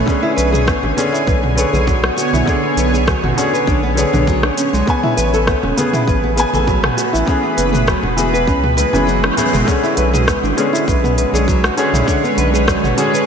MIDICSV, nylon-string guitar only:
0, 0, Header, 1, 2, 480
1, 0, Start_track
1, 0, Tempo, 600000
1, 62, Time_signature, 4, 2, 24, 8
1, 10610, End_track
2, 0, Start_track
2, 0, Title_t, "Nylon-string guitar"
2, 0, Program_c, 0, 24
2, 52, Note_on_c, 0, 59, 71
2, 179, Note_off_c, 0, 59, 0
2, 181, Note_on_c, 0, 64, 88
2, 288, Note_off_c, 0, 64, 0
2, 291, Note_on_c, 0, 71, 75
2, 415, Note_off_c, 0, 71, 0
2, 419, Note_on_c, 0, 68, 77
2, 525, Note_off_c, 0, 68, 0
2, 532, Note_on_c, 0, 59, 74
2, 659, Note_off_c, 0, 59, 0
2, 660, Note_on_c, 0, 62, 71
2, 771, Note_off_c, 0, 62, 0
2, 774, Note_on_c, 0, 59, 70
2, 893, Note_off_c, 0, 59, 0
2, 900, Note_on_c, 0, 64, 73
2, 1005, Note_off_c, 0, 64, 0
2, 1013, Note_on_c, 0, 71, 78
2, 1139, Note_off_c, 0, 71, 0
2, 1144, Note_on_c, 0, 59, 66
2, 1210, Note_off_c, 0, 59, 0
2, 1256, Note_on_c, 0, 71, 68
2, 1380, Note_off_c, 0, 71, 0
2, 1385, Note_on_c, 0, 68, 71
2, 1488, Note_off_c, 0, 68, 0
2, 1497, Note_on_c, 0, 54, 79
2, 1614, Note_off_c, 0, 54, 0
2, 1626, Note_on_c, 0, 66, 74
2, 1728, Note_off_c, 0, 66, 0
2, 1739, Note_on_c, 0, 66, 78
2, 1862, Note_off_c, 0, 66, 0
2, 1868, Note_on_c, 0, 64, 68
2, 1969, Note_off_c, 0, 64, 0
2, 1981, Note_on_c, 0, 62, 92
2, 2096, Note_off_c, 0, 62, 0
2, 2107, Note_on_c, 0, 59, 69
2, 2172, Note_off_c, 0, 59, 0
2, 2220, Note_on_c, 0, 71, 75
2, 2342, Note_off_c, 0, 71, 0
2, 2351, Note_on_c, 0, 68, 70
2, 2451, Note_off_c, 0, 68, 0
2, 2464, Note_on_c, 0, 54, 76
2, 2578, Note_off_c, 0, 54, 0
2, 2589, Note_on_c, 0, 66, 71
2, 2690, Note_off_c, 0, 66, 0
2, 2700, Note_on_c, 0, 66, 73
2, 2823, Note_off_c, 0, 66, 0
2, 2827, Note_on_c, 0, 71, 72
2, 2929, Note_off_c, 0, 71, 0
2, 2939, Note_on_c, 0, 62, 100
2, 3056, Note_off_c, 0, 62, 0
2, 3064, Note_on_c, 0, 59, 76
2, 3131, Note_off_c, 0, 59, 0
2, 3177, Note_on_c, 0, 71, 72
2, 3301, Note_off_c, 0, 71, 0
2, 3306, Note_on_c, 0, 62, 74
2, 3414, Note_off_c, 0, 62, 0
2, 3418, Note_on_c, 0, 54, 85
2, 3535, Note_off_c, 0, 54, 0
2, 3547, Note_on_c, 0, 62, 78
2, 3655, Note_off_c, 0, 62, 0
2, 3660, Note_on_c, 0, 61, 77
2, 3782, Note_off_c, 0, 61, 0
2, 3785, Note_on_c, 0, 56, 71
2, 3893, Note_off_c, 0, 56, 0
2, 3896, Note_on_c, 0, 59, 78
2, 4020, Note_off_c, 0, 59, 0
2, 4027, Note_on_c, 0, 64, 95
2, 4132, Note_off_c, 0, 64, 0
2, 4135, Note_on_c, 0, 71, 72
2, 4260, Note_off_c, 0, 71, 0
2, 4269, Note_on_c, 0, 69, 74
2, 4370, Note_off_c, 0, 69, 0
2, 4382, Note_on_c, 0, 59, 76
2, 4503, Note_off_c, 0, 59, 0
2, 4506, Note_on_c, 0, 61, 73
2, 4614, Note_off_c, 0, 61, 0
2, 4619, Note_on_c, 0, 59, 72
2, 4735, Note_off_c, 0, 59, 0
2, 4747, Note_on_c, 0, 64, 80
2, 4849, Note_off_c, 0, 64, 0
2, 4861, Note_on_c, 0, 71, 84
2, 4983, Note_off_c, 0, 71, 0
2, 4988, Note_on_c, 0, 59, 77
2, 5052, Note_off_c, 0, 59, 0
2, 5097, Note_on_c, 0, 71, 76
2, 5221, Note_off_c, 0, 71, 0
2, 5227, Note_on_c, 0, 69, 72
2, 5329, Note_off_c, 0, 69, 0
2, 5338, Note_on_c, 0, 54, 84
2, 5455, Note_off_c, 0, 54, 0
2, 5464, Note_on_c, 0, 66, 74
2, 5565, Note_off_c, 0, 66, 0
2, 5575, Note_on_c, 0, 66, 71
2, 5700, Note_off_c, 0, 66, 0
2, 5704, Note_on_c, 0, 64, 76
2, 5807, Note_off_c, 0, 64, 0
2, 5813, Note_on_c, 0, 61, 93
2, 5933, Note_off_c, 0, 61, 0
2, 5945, Note_on_c, 0, 59, 70
2, 6011, Note_off_c, 0, 59, 0
2, 6054, Note_on_c, 0, 71, 74
2, 6178, Note_off_c, 0, 71, 0
2, 6181, Note_on_c, 0, 68, 76
2, 6286, Note_off_c, 0, 68, 0
2, 6297, Note_on_c, 0, 54, 84
2, 6414, Note_off_c, 0, 54, 0
2, 6426, Note_on_c, 0, 66, 71
2, 6528, Note_off_c, 0, 66, 0
2, 6536, Note_on_c, 0, 66, 75
2, 6661, Note_off_c, 0, 66, 0
2, 6667, Note_on_c, 0, 71, 78
2, 6769, Note_off_c, 0, 71, 0
2, 6780, Note_on_c, 0, 61, 105
2, 6896, Note_off_c, 0, 61, 0
2, 6908, Note_on_c, 0, 59, 74
2, 6972, Note_off_c, 0, 59, 0
2, 7018, Note_on_c, 0, 71, 72
2, 7141, Note_off_c, 0, 71, 0
2, 7145, Note_on_c, 0, 61, 76
2, 7253, Note_off_c, 0, 61, 0
2, 7255, Note_on_c, 0, 54, 83
2, 7374, Note_off_c, 0, 54, 0
2, 7387, Note_on_c, 0, 61, 79
2, 7491, Note_off_c, 0, 61, 0
2, 7500, Note_on_c, 0, 61, 76
2, 7622, Note_off_c, 0, 61, 0
2, 7626, Note_on_c, 0, 56, 75
2, 7734, Note_off_c, 0, 56, 0
2, 7739, Note_on_c, 0, 59, 69
2, 7862, Note_off_c, 0, 59, 0
2, 7867, Note_on_c, 0, 64, 94
2, 7975, Note_off_c, 0, 64, 0
2, 7978, Note_on_c, 0, 71, 76
2, 8101, Note_off_c, 0, 71, 0
2, 8107, Note_on_c, 0, 68, 78
2, 8209, Note_off_c, 0, 68, 0
2, 8218, Note_on_c, 0, 59, 81
2, 8341, Note_off_c, 0, 59, 0
2, 8347, Note_on_c, 0, 62, 71
2, 8455, Note_off_c, 0, 62, 0
2, 8458, Note_on_c, 0, 59, 70
2, 8575, Note_off_c, 0, 59, 0
2, 8583, Note_on_c, 0, 64, 70
2, 8687, Note_off_c, 0, 64, 0
2, 8700, Note_on_c, 0, 71, 85
2, 8822, Note_off_c, 0, 71, 0
2, 8831, Note_on_c, 0, 59, 73
2, 8894, Note_off_c, 0, 59, 0
2, 8940, Note_on_c, 0, 71, 72
2, 9062, Note_off_c, 0, 71, 0
2, 9069, Note_on_c, 0, 68, 76
2, 9170, Note_off_c, 0, 68, 0
2, 9183, Note_on_c, 0, 54, 84
2, 9297, Note_off_c, 0, 54, 0
2, 9309, Note_on_c, 0, 66, 80
2, 9410, Note_off_c, 0, 66, 0
2, 9420, Note_on_c, 0, 66, 78
2, 9542, Note_off_c, 0, 66, 0
2, 9548, Note_on_c, 0, 64, 72
2, 9650, Note_off_c, 0, 64, 0
2, 9659, Note_on_c, 0, 62, 93
2, 9776, Note_off_c, 0, 62, 0
2, 9790, Note_on_c, 0, 59, 73
2, 9853, Note_off_c, 0, 59, 0
2, 9901, Note_on_c, 0, 71, 79
2, 10023, Note_off_c, 0, 71, 0
2, 10029, Note_on_c, 0, 68, 76
2, 10130, Note_off_c, 0, 68, 0
2, 10143, Note_on_c, 0, 54, 85
2, 10257, Note_off_c, 0, 54, 0
2, 10270, Note_on_c, 0, 66, 73
2, 10371, Note_off_c, 0, 66, 0
2, 10381, Note_on_c, 0, 66, 75
2, 10503, Note_off_c, 0, 66, 0
2, 10508, Note_on_c, 0, 71, 76
2, 10609, Note_off_c, 0, 71, 0
2, 10610, End_track
0, 0, End_of_file